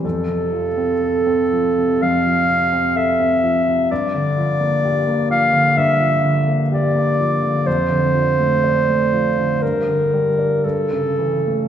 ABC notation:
X:1
M:4/4
L:1/16
Q:1/4=63
K:Gdor
V:1 name="Clarinet"
A8 f4 e4 | d6 f2 e2 z2 d4 | c8 B4 A4 |]
V:2 name="Grand piano" clef=bass
F,, C, F, C A C F, C, F,, F, C, C A C F, C, | G,, D, F, B, G B, F, D, G,, F, D, B, G B, F, D, | F,, D, F, A, D A, F, D, G,, D, G, D G,, ^C, E, A, |]